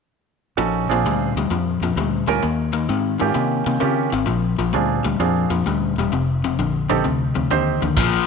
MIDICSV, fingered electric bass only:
0, 0, Header, 1, 2, 480
1, 0, Start_track
1, 0, Tempo, 461894
1, 610, Time_signature, 4, 2, 24, 8
1, 8591, End_track
2, 0, Start_track
2, 0, Title_t, "Fingered electric bass"
2, 0, Program_c, 0, 33
2, 602, Note_on_c, 0, 34, 85
2, 908, Note_off_c, 0, 34, 0
2, 923, Note_on_c, 0, 34, 77
2, 1073, Note_off_c, 0, 34, 0
2, 1094, Note_on_c, 0, 38, 78
2, 1394, Note_off_c, 0, 38, 0
2, 1409, Note_on_c, 0, 38, 76
2, 1556, Note_off_c, 0, 38, 0
2, 1565, Note_on_c, 0, 41, 77
2, 1869, Note_off_c, 0, 41, 0
2, 1886, Note_on_c, 0, 41, 81
2, 2034, Note_off_c, 0, 41, 0
2, 2040, Note_on_c, 0, 38, 83
2, 2346, Note_off_c, 0, 38, 0
2, 2363, Note_on_c, 0, 38, 81
2, 2512, Note_off_c, 0, 38, 0
2, 2529, Note_on_c, 0, 39, 90
2, 2976, Note_off_c, 0, 39, 0
2, 3007, Note_on_c, 0, 44, 81
2, 3310, Note_off_c, 0, 44, 0
2, 3340, Note_on_c, 0, 44, 78
2, 3479, Note_off_c, 0, 44, 0
2, 3485, Note_on_c, 0, 48, 80
2, 3789, Note_off_c, 0, 48, 0
2, 3806, Note_on_c, 0, 48, 82
2, 3954, Note_off_c, 0, 48, 0
2, 3972, Note_on_c, 0, 49, 79
2, 4273, Note_off_c, 0, 49, 0
2, 4286, Note_on_c, 0, 32, 80
2, 4434, Note_off_c, 0, 32, 0
2, 4438, Note_on_c, 0, 34, 83
2, 4746, Note_off_c, 0, 34, 0
2, 4768, Note_on_c, 0, 34, 81
2, 4915, Note_off_c, 0, 34, 0
2, 4929, Note_on_c, 0, 38, 82
2, 5232, Note_off_c, 0, 38, 0
2, 5246, Note_on_c, 0, 38, 77
2, 5395, Note_off_c, 0, 38, 0
2, 5399, Note_on_c, 0, 41, 85
2, 5707, Note_off_c, 0, 41, 0
2, 5718, Note_on_c, 0, 41, 84
2, 5871, Note_off_c, 0, 41, 0
2, 5887, Note_on_c, 0, 38, 77
2, 6192, Note_off_c, 0, 38, 0
2, 6214, Note_on_c, 0, 28, 86
2, 6359, Note_off_c, 0, 28, 0
2, 6371, Note_on_c, 0, 29, 87
2, 6819, Note_off_c, 0, 29, 0
2, 6848, Note_on_c, 0, 34, 81
2, 7153, Note_off_c, 0, 34, 0
2, 7180, Note_on_c, 0, 34, 76
2, 7323, Note_off_c, 0, 34, 0
2, 7331, Note_on_c, 0, 38, 81
2, 7635, Note_off_c, 0, 38, 0
2, 7654, Note_on_c, 0, 38, 74
2, 7800, Note_off_c, 0, 38, 0
2, 7812, Note_on_c, 0, 39, 82
2, 8116, Note_off_c, 0, 39, 0
2, 8132, Note_on_c, 0, 39, 79
2, 8276, Note_off_c, 0, 39, 0
2, 8282, Note_on_c, 0, 34, 86
2, 8495, Note_off_c, 0, 34, 0
2, 8591, End_track
0, 0, End_of_file